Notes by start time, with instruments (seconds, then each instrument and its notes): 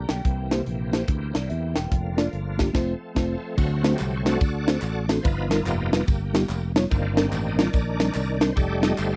Already playing: tonewheel organ D3 G3 A#3 G4
0.09 fingered electric bass B1, tine electric piano G5, snare, closed hi-hat
0.24 fingered electric bass C2, tine electric piano C3, tonewheel organ E3 C4 G4, kick, closed hi-hat
0.51 tine electric piano A#3 E4 G4 C5, snare, closed hi-hat
0.66 fingered electric bass A#1, closed hi-hat
0.92 tine electric piano A#3 E4 G4 C5, snare, closed hi-hat
1.08 fingered electric bass D2, kick, closed hi-hat
1.34 fingered electric bass C2, tine electric piano D5, snare, closed hi-hat
1.50 fingered electric bass E2, tine electric piano E5, closed hi-hat
1.75 fingered electric bass E1, tine electric piano G5, snare, closed hi-hat
1.90 fingered electric bass F1, tonewheel organ D3 F3 F4, kick, closed hi-hat
2.17 tine electric piano A#3 D4 F4 D5, snare, closed hi-hat
2.33 fingered electric bass G1, closed hi-hat
2.58 tine electric piano A#3 D4 F4 G4, kick, snare, closed hi-hat
2.73 fingered electric bass F1, tine electric piano A3 C4 F4 C5, tonewheel organ A3 C4 A4, kick, snare, crash
3.15 fingered electric bass F1, tine electric piano A3 C4 F4 C5, kick, snare, crash
3.57 fingered electric bass D2, tine electric piano D3, tonewheel organ F#3 A3 C4 F#4, kick, crash, tambourine
3.84 tine electric piano A3 C4 D4 F#4 C5, tonewheel organ F#4, snare, ride, tambourine
3.91 tonewheel organ G4
3.99 fingered electric bass C2, clap, ride, tambourine
4.17 tonewheel organ C#5
4.25 tonewheel organ F#3 A3 C4 F#4 A4 D5, tine electric piano A3 C4 D4 F#4 C5, snare, ride, tambourine
4.40 fingered electric bass D2, kick, ride, tambourine
4.67 tine electric piano A3 C4 D4 F#4 C5, snare, ride, tambourine
4.82 fingered electric bass A1, clap, ride, tambourine
5.09 tine electric piano A3 C4 D4 F#4 A4, tonewheel organ C5, snare, ride, tambourine
5.23 fingered electric bass G1, tine electric piano G2, tonewheel organ F3 B3 D#4 F4 B4, kick, ride, tambourine
5.50 tine electric piano G3 B3 D#4 F4 A#4, tonewheel organ A#4, snare, ride, tambourine
5.66 fingered electric bass F1, tonewheel organ A#3 B3 G4, clap, ride, tambourine
5.92 tonewheel organ F3 B3 D#4, tine electric piano G3 B3 D#4 F4 B4, snare, ride, tambourine
6.07 fingered electric bass G1, kick, ride, tambourine
6.33 tine electric piano G3 B3 D#4 F4 G4, snare, ride, tambourine
6.49 fingered electric bass F1, clap, ride, tambourine
6.76 tine electric piano G3 B3 D#4 F4 C#5, snare, ride, tambourine
6.90 fingered electric bass G1, tine electric piano G2, tonewheel organ D#3 A#3 C4 D4 F4, kick, ride, tambourine
7.17 tine electric piano G3 C4 D4 D#4 A#4, tonewheel organ A4, snare, ride, tambourine
7.25 tonewheel organ G4
7.32 fingered electric bass A1, clap, ride, tambourine
7.48 tonewheel organ D#5
7.58 tine electric piano G3 C4 D4 D#4 F4, tonewheel organ A#4 D5, snare, ride, tambourine
7.73 fingered electric bass A#1, kick, ride, tambourine
7.99 tine electric piano G3 C4 D4 D#4 A#4, snare, ride, tambourine
8.14 fingered electric bass C2, clap, ride, tambourine
8.40 tine electric piano G3 C4 D4 D#4 A#4, tonewheel organ C5, snare, ride, tambourine
8.56 fingered electric bass F1, tonewheel organ G3 A3 D#4 G4 A4 D5, kick, ride, tambourine
8.81 tine electric piano G3 C4 D#4 F4 A4, tonewheel organ D#5, snare, ride, tambourine
8.97 fingered electric bass G1, tonewheel organ A4 C5 F5, clap, ride, tambourine